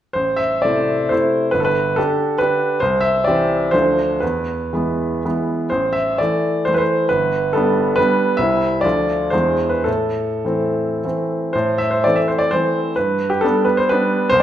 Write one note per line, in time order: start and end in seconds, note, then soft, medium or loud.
0.13 0.63 A1 soft
0.13 0.38 C5 medium
0.36 0.63 E5 medium
0.62 1.08 C3 soft
0.62 1.08 A3 soft
0.62 1.08 E4 soft
0.62 1.11 D5 medium
1.09 1.51 C3 soft
1.09 1.51 A3 soft
1.09 1.51 E4 soft
1.09 1.54 C5 medium
1.51 1.96 G1 soft
1.51 1.59 B4 medium
1.60 1.67 A4 soft
1.65 1.96 B4 medium
1.96 2.37 D3 soft
1.96 2.37 D4 soft
1.96 2.37 G4 soft
1.96 2.40 A4 medium
2.38 2.78 D3 soft
2.38 2.78 D4 soft
2.38 2.79 G4 soft
2.38 2.81 B4 medium
2.80 3.25 C2 soft
2.80 3.03 C5 medium
3.01 3.25 E5 medium
3.24 3.70 E3 soft
3.24 3.70 C4 soft
3.24 3.71 G4 soft
3.24 3.73 D5 medium
3.71 4.20 D2 soft
3.71 4.17 F3 soft
3.71 4.18 A3 soft
3.71 4.18 D4 soft
3.71 4.21 C5 medium
4.20 4.72 E2 soft
4.20 5.24 B4 soft
4.73 5.21 E3 soft
4.73 5.21 G#3 soft
4.73 5.22 B3 soft
5.25 5.68 E3 soft
5.25 5.68 G#3 soft
5.25 5.68 B3 soft
5.70 6.18 A1 soft
5.70 5.94 C5 medium
5.93 6.18 E5 medium
6.18 6.64 E3 soft
6.18 6.64 A3 soft
6.18 6.67 D5 medium
6.65 7.06 E3 soft
6.65 7.07 A3 soft
6.65 6.73 C5 medium
6.74 6.81 B4 medium
6.74 7.09 C5 medium
7.09 7.53 G1 soft
7.09 7.53 B4 medium
7.53 7.94 G3 soft
7.53 7.94 B3 soft
7.53 7.95 D4 soft
7.53 7.97 A4 medium
7.96 8.36 G3 soft
7.96 8.36 B3 soft
7.96 8.36 D4 soft
7.96 8.39 B4 medium
8.37 8.82 C2 soft
8.37 8.80 G3 soft
8.37 8.80 C4 soft
8.37 8.80 E4 soft
8.37 8.83 E5 medium
8.81 9.31 D2 soft
8.81 9.29 F3 soft
8.81 9.29 A3 soft
8.81 9.31 D5 medium
8.85 9.29 F4 soft
9.30 9.85 E2 soft
9.30 9.83 E3 soft
9.30 9.83 G#3 soft
9.30 9.83 D4 soft
9.30 9.71 C5 medium
9.69 9.85 B4 soft
9.84 10.44 A2 soft
9.84 11.03 A4 soft
10.45 10.99 E3 soft
10.45 11.00 A3 soft
10.45 11.00 C4 soft
11.04 11.53 E3 soft
11.04 11.53 A3 soft
11.04 11.53 C4 soft
11.53 12.03 A2 soft
11.53 11.78 C5 medium
11.78 11.91 E5 medium
11.91 12.04 C5 soft
12.04 12.49 E3 soft
12.04 12.49 A3 soft
12.04 12.50 C4 soft
12.04 12.17 D5 medium
12.16 12.29 E5 medium
12.28 12.40 C5 soft
12.39 12.51 D5 medium
12.51 12.93 E3 soft
12.51 12.93 A3 soft
12.51 12.93 C4 soft
12.51 12.96 C5 medium
12.96 13.43 G2 soft
12.96 13.31 B4 medium
13.30 13.42 G4 medium
13.41 13.86 G3 soft
13.41 13.86 B3 soft
13.41 13.86 D4 soft
13.41 13.66 A4 medium
13.65 13.77 B4 medium
13.77 13.89 C5 medium
13.89 14.29 G3 soft
13.89 14.29 B3 soft
13.89 14.29 D4 soft
13.89 14.32 B4 medium
14.29 14.43 C2 soft
14.29 14.41 C5 medium